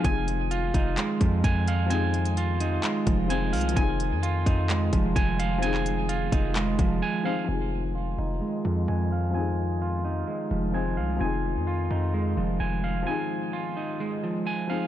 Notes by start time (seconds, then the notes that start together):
0.00 F3 C4
0.04 F1 D#3 G#3 D#4 F4 G#5, kick, closed hi-hat
0.09 G#4
0.28 closed hi-hat
0.51 F4, closed hi-hat
0.74 F1 D#4, kick, closed hi-hat
0.97 G#3, clap, closed hi-hat
1.21 F2 F3, kick, closed hi-hat
1.44 F2 G#5, kick, closed hi-hat
1.68 F5, closed hi-hat
1.86 F3 C4 G#5
1.91 D#4, closed hi-hat
1.95 G#4
2.14 closed hi-hat
2.25 closed hi-hat
2.37 F4, closed hi-hat
2.60 D#4, closed hi-hat
2.83 G#3, clap, closed hi-hat
3.07 F1 F3, kick, closed hi-hat
3.28 F3 C4 D#4 G#5, closed hi-hat
3.32 G#4
3.53 C2 F5, closed hi-hat, open hi-hat
3.61 closed hi-hat
3.69 F3, closed hi-hat
3.75 F1 G#3 C4 D#4 G#5, kick, closed hi-hat
3.81 G#4
4.00 closed hi-hat
4.11 F2
4.23 F4, closed hi-hat
4.46 F2 D#4, kick, closed hi-hat
4.70 G#3, clap, closed hi-hat
4.93 F1 F3, kick, closed hi-hat
5.16 F1 G#5, kick, closed hi-hat
5.39 F5, closed hi-hat
5.58 F3 C4
5.62 D#4 G#4 G#5, closed hi-hat
5.67 G#4
5.74 clap
5.86 closed hi-hat
6.09 F4, closed hi-hat
6.32 F1 D#4, kick, closed hi-hat
6.56 G#3, clap, closed hi-hat
6.79 F1 F3, kick, closed hi-hat
7.02 G#5
7.23 F3 C4 D#4 F5
7.27 G#4
7.44 F3 C4
7.49 F1 D#3 G#3 D#4 F4 G#5
7.53 G#4
7.95 F4
8.18 F1 D#4
8.41 G#3
8.65 F2 F3
8.88 F2 G#5
9.12 F5
9.30 F3 C4 G#5
9.36 D#4 G#4
9.82 F4
10.05 D#4
10.27 G#3
10.51 F1 F3
10.72 F3 C4 D#4 G#5
10.76 G#4
10.97 C2 F5
11.16 F3 C4
11.21 F1 D#4 G#5
11.25 G#4
11.56 F2
11.67 F4
11.91 F2 D#4
12.14 G#3
12.37 F1 F3
12.60 F1 G#5
12.84 F5
13.03 F3 C4
13.07 D#4 G#5
13.11 G#4
13.53 F4
13.77 D#4
14.00 G#3
14.23 F3
14.47 G#5
14.68 F3 C4 D#4 F5
14.72 G#4